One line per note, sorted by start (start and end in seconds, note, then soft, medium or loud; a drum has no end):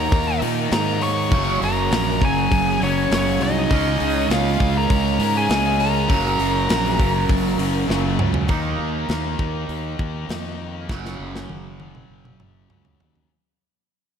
0.00 0.10 D#2 medium
0.00 0.11 D#3 medium
0.00 0.40 D#3 loud
0.00 0.12 A#3 medium
0.00 0.41 A#3 loud
0.00 0.12 D#4 medium
0.00 0.40 D#4 loud
0.00 0.38 A#4 loud
0.00 0.38 A#5 loud
0.12 0.40 D#2 medium
0.12 0.41 D#3 medium
0.12 0.41 A#3 medium
0.12 0.42 D#4 loud
0.12 kick loud
0.12 open hi-hat medium
0.42 0.70 A#2 loud
0.42 0.70 D#3 medium
0.42 0.71 A#3 medium
0.42 0.72 D#4 medium
0.42 open hi-hat medium
0.72 1.33 G#2 medium
0.72 1.00 D#3 medium
0.72 1.01 A#3 medium
0.72 1.02 D#4 medium
0.72 1.00 A#4 loud
0.72 1.00 A#5 loud
0.72 snare loud
0.72 open hi-hat medium
1.01 1.30 D#3 loud
1.01 1.30 A#3 loud
1.01 1.30 D#4 medium
1.01 1.58 C#5 loud
1.01 1.58 C#6 loud
1.01 open hi-hat medium
1.31 1.59 F#1 loud
1.31 1.60 F#2 medium
1.31 1.61 C#3 loud
1.31 1.62 F#3 loud
1.31 kick loud
1.31 open hi-hat medium
1.61 1.89 F#1 medium
1.61 1.90 F#2 medium
1.61 1.90 C#3 loud
1.61 1.91 F#3 loud
1.61 2.18 A#4 loud
1.61 2.24 A#5 loud
1.61 open hi-hat medium
1.91 2.19 A#1 loud
1.91 2.20 F#2 medium
1.91 2.21 C#3 loud
1.91 2.21 F#3 loud
1.91 snare loud
1.91 open hi-hat medium
2.21 2.49 F#1 medium
2.21 2.50 F#2 medium
2.21 2.50 C#3 loud
2.21 2.51 F#3 loud
2.21 2.78 G#4 medium
2.21 2.79 G#5 loud
2.21 kick medium
2.21 open hi-hat medium
2.51 2.79 F#1 medium
2.51 2.79 F#2 loud
2.51 2.80 C#3 medium
2.51 2.81 F#3 loud
2.51 kick loud
2.51 open hi-hat medium
2.81 3.09 F#1 medium
2.81 3.09 F#2 medium
2.81 3.10 C#3 medium
2.81 3.11 F#3 loud
2.81 3.13 C#5 medium
2.81 open hi-hat medium
2.85 3.11 C#4 medium
3.10 3.39 F#1 medium
3.10 3.39 F#2 medium
3.10 3.39 C#3 loud
3.10 3.40 F#3 loud
3.10 3.40 C#4 medium
3.10 3.43 C#5 loud
3.10 snare loud
3.10 open hi-hat medium
3.40 3.68 C2 loud
3.40 3.68 F#2 medium
3.40 3.69 C#3 medium
3.40 3.69 F#3 loud
3.40 4.27 D#4 medium
3.40 4.27 D#5 medium
3.40 open hi-hat medium
3.70 3.99 C#2 loud
3.70 3.98 C#3 loud
3.70 3.99 G#3 loud
3.70 4.00 C#4 loud
3.70 kick loud
3.70 open hi-hat loud
3.99 4.28 C#2 loud
3.99 4.28 C#3 medium
3.99 4.29 G#3 loud
3.99 4.30 C#4 loud
3.99 open hi-hat medium
4.30 4.58 C#2 loud
4.30 4.58 C#3 medium
4.30 4.59 G#3 loud
4.30 4.60 C#4 loud
4.30 4.73 F4 medium
4.30 4.77 F5 medium
4.30 snare loud
4.30 open hi-hat medium
4.59 4.88 C#2 medium
4.59 4.87 C#3 medium
4.59 4.88 G#3 loud
4.59 4.89 C#4 loud
4.59 kick medium
4.59 open hi-hat medium
4.77 5.32 A#4 medium
4.77 5.38 A#5 loud
4.89 5.18 C#2 medium
4.89 5.17 C#3 loud
4.89 5.18 G#3 medium
4.89 5.19 C#4 loud
4.89 kick loud
4.89 open hi-hat medium
5.18 5.47 G#2 medium
5.18 5.48 C#3 medium
5.18 5.48 G#3 loud
5.18 5.49 C#4 loud
5.18 open hi-hat medium
5.37 5.78 G#4 medium
5.37 5.82 G#5 loud
5.49 6.06 C#2 medium
5.49 5.78 C#3 medium
5.49 5.78 G#3 medium
5.49 5.79 C#4 medium
5.49 snare loud
5.49 open hi-hat medium
5.79 6.07 C#3 medium
5.79 6.08 G#3 medium
5.79 6.08 C#4 loud
5.79 7.86 A#4 medium
5.79 7.86 A#5 medium
5.79 open hi-hat medium
6.08 6.38 F#1 loud
6.08 6.38 F#2 medium
6.08 6.38 C#3 loud
6.08 6.39 F#3 loud
6.08 kick loud
6.08 open hi-hat medium
6.39 6.67 F#1 medium
6.39 6.67 F#2 medium
6.39 6.68 C#3 medium
6.39 6.68 F#3 loud
6.39 open hi-hat medium
6.68 6.97 A#1 loud
6.68 6.97 F#2 medium
6.68 6.98 C#3 medium
6.68 6.98 F#3 loud
6.68 snare loud
6.68 open hi-hat medium
6.98 7.27 F#1 medium
6.98 7.28 F#2 medium
6.98 7.28 C#3 medium
6.98 7.29 F#3 loud
6.98 kick medium
6.98 open hi-hat medium
7.29 7.57 F#1 loud
7.29 7.58 F#2 medium
7.29 7.58 C#3 loud
7.29 7.59 F#3 loud
7.29 kick loud
7.29 open hi-hat medium
7.59 7.87 F#1 loud
7.59 7.87 F#2 medium
7.59 7.88 C#3 loud
7.59 7.89 F#3 medium
7.59 open hi-hat medium
7.88 8.17 F#1 medium
7.88 8.18 F#2 medium
7.88 8.18 C#3 medium
7.88 8.19 F#3 medium
7.88 snare medium
8.19 8.49 C#2 medium
8.19 8.47 F#2 medium
8.19 8.47 C#3 loud
8.19 8.48 F#3 loud
8.19 mid tom loud
8.34 floor tom loud
8.48 8.75 D#2 loud
8.48 9.37 D#3 medium
8.48 9.39 A#3 loud
8.48 9.37 D#4 loud
8.48 kick loud
8.48 open hi-hat medium
8.78 9.04 D#2 medium
9.09 9.35 D#2 medium
9.09 snare loud
9.09 open hi-hat soft
9.38 9.65 D#2 medium
9.38 10.27 D#3 medium
9.38 10.29 A#3 medium
9.38 10.27 D#4 medium
9.38 kick medium
9.69 9.95 D#2 medium
9.69 open hi-hat soft
9.99 10.25 D#2 medium
9.99 kick medium
10.28 10.91 F2 medium
10.28 10.87 D#3 medium
10.28 10.90 A#3 medium
10.28 10.88 D#4 medium
10.28 snare loud
10.28 open hi-hat soft
10.89 11.15 F#1 medium
10.89 11.78 F#2 medium
10.89 11.78 C#3 loud
10.89 11.78 F#3 loud
10.89 kick loud
10.89 snare medium
11.05 snare soft
11.19 11.45 F#1 medium
11.36 snare medium
11.49 12.02 F#1 medium
11.49 high tom medium
11.79 12.68 F#2 medium
11.79 12.69 C#3 medium
11.79 12.68 F#3 medium
11.79 high tom medium
11.95 mid tom medium
12.10 12.36 F#1 medium
12.25 mid tom medium
12.40 12.66 F#1 medium
12.40 mid tom medium
12.69 12.96 C#2 medium
12.69 13.28 F#2 medium
12.69 13.29 C#3 medium
12.69 13.29 F#3 medium
12.69 mid tom medium
12.85 floor tom medium
13.00 13.27 D#2 medium
13.00 floor tom medium
13.15 floor tom medium